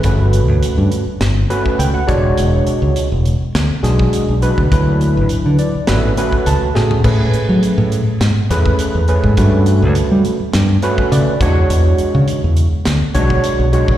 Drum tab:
CC |----------------|----------------|----------------|x---------------|
HH |x-x-x-x-x-x-x-x-|x-x-x-x-x-x-x-x-|x-x-x-x-x-x-x---|--x-x-x-x-x-x-x-|
SD |--------o-------|--------o-o-----|--------o-----o-|--------o-o-----|
FT |----------------|----------------|---------------o|----------------|
BD |o----------o--o-|-----------o---o|o----------o----|o----------o---o|

CC |----------------|----------------|
HH |x-x-x-x-x-x-x-x-|x-x-x-x-x-x-x-x-|
SD |--------o-------|--------o-------|
FT |----------------|----------------|
BD |o----------o--o-|-----------o---o|